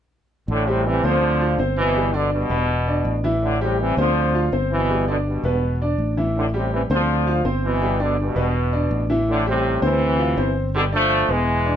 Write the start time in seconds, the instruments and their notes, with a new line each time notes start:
0.48 fingered electric bass A1, trombone section A2 D3
0.67 trombone section A2 C3, grand piano G3 G4
0.86 trombone section C3 E3
1.03 fingered electric bass D2, trombone section D3 F3, grand piano C4 C5
1.41 grand piano F4 F5
1.58 fingered electric bass G1, grand piano C4 C5
1.77 trombone section B2 E3
1.95 grand piano G3 G4
2.14 trombone section B2 D3, grand piano D4 D5
2.33 trombone section G2 B2
2.50 fingered electric bass E1, grand piano B3 B4
2.87 grand piano D4 D5
3.05 fingered electric bass A1
3.24 grand piano E3 E4
3.43 trombone section A2 D3
3.61 trombone section A2 C3, grand piano G3 G4
3.80 trombone section C3 E3
3.97 fingered electric bass D2, trombone section D3 F3, grand piano C4 C5
4.34 grand piano F4 F5
4.52 fingered electric bass G1, grand piano C4 C5
4.72 trombone section B2 E3
4.89 grand piano G3 G4
5.08 trombone section B2 D3, grand piano D4 D5
5.27 trombone section G2 B2
5.44 fingered electric bass E1, grand piano B3 B4
5.81 grand piano D4 D5
5.98 fingered electric bass A1
6.17 grand piano E3 E4
6.37 trombone section A2 D3
6.54 trombone section A2 C3, grand piano G3 G4
6.73 trombone section C3 E3
6.90 fingered electric bass D2, trombone section D3 F3, grand piano C4 C5
7.27 grand piano F4 F5
7.45 fingered electric bass G1, grand piano C4 C5
7.65 trombone section B2 E3
7.81 grand piano G3 G4
7.99 trombone section B2 D3, grand piano D4 D5
8.19 trombone section G2 B2
8.36 fingered electric bass E1, grand piano B3 B4
8.73 grand piano D4 D5
8.91 fingered electric bass A1
9.10 grand piano E3 E4
9.30 trombone section A2 D3
9.46 trombone section A2 C3, grand piano G3 G4
9.82 fingered electric bass D2, trombone section C3 E3, grand piano C4 C5
10.19 grand piano F4 F5
10.37 fingered electric bass G1, grand piano C4 C5
10.74 trombone section B2 D3, grand piano G3 G4
10.92 trombone section F3 A3, grand piano D4 D5
11.29 fingered electric bass E1, trombone section E3 G#3, grand piano B3 B4
11.66 grand piano D4 D5